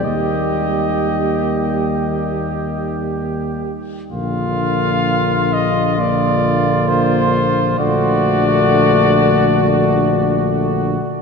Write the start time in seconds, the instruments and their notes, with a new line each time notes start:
0.04 tuba D#2, trombone G3, euphonium A#3, flugelhorn G4, cornet D#5
4.10 tuba A#1, trombone D3, euphonium A#3, flugelhorn F4, cornet F5
5.53 cornet D#5
5.98 trombone D3, euphonium A#3, flugelhorn F4, cornet D5
6.88 cornet C5
7.78 tuba A#1, trombone D3, euphonium A3, flugelhorn F#4, cornet D5